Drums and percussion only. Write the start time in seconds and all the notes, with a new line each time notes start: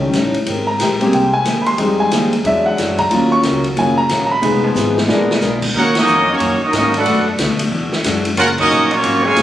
0.13 snare, hi-hat pedal, ride
0.34 ride
0.46 ride
0.80 snare, hi-hat pedal, ride
1.01 ride
1.13 ride
1.45 snare, hi-hat pedal, ride
1.66 ride
1.78 ride
2.11 snare, hi-hat pedal, ride
2.33 ride
2.45 ride
2.78 snare, hi-hat pedal, ride
2.98 kick, ride
3.11 ride
3.43 snare, hi-hat pedal, ride
3.64 ride
3.77 ride
4.09 snare, hi-hat pedal, ride
4.43 ride
4.76 snare, hi-hat pedal
4.98 snare
5.09 snare
5.31 snare
5.41 snare, hi-hat pedal
5.62 kick, crash
5.95 snare, ride
6.07 hi-hat pedal
6.40 ride
6.73 snare, hi-hat pedal, ride
6.94 ride
7.06 ride
7.38 snare, hi-hat pedal, ride
7.59 ride
7.93 snare
8.04 snare, hi-hat pedal, ride
8.25 ride
8.37 ride
8.58 kick, crash
8.70 hi-hat pedal
8.91 ride
9.04 ride
9.36 snare, hi-hat pedal, ride